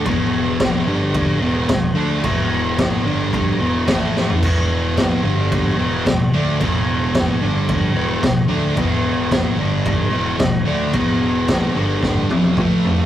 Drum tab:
CC |x---x---x---x---|x---x---x---x---|x---x---x---x---|x---x---x---x---|
SD |----o-------o---|----o-------o-o-|----o-------o---|----o-------o---|
T1 |----------------|----------------|----------------|----------------|
T2 |----------------|----------------|----------------|----------------|
FT |----------------|---------------o|----------------|----------------|
BD |o---o---o---o---|o---o---o---o---|o---o---o---o---|o---o---o---o---|

CC |x---x---x---x---|x---x-----------|
SD |----o-------o---|----o---o-------|
T1 |----------------|----------oo----|
T2 |----------------|------------o---|
FT |----------------|--------------oo|
BD |o---o---o---o---|o---o---o---o---|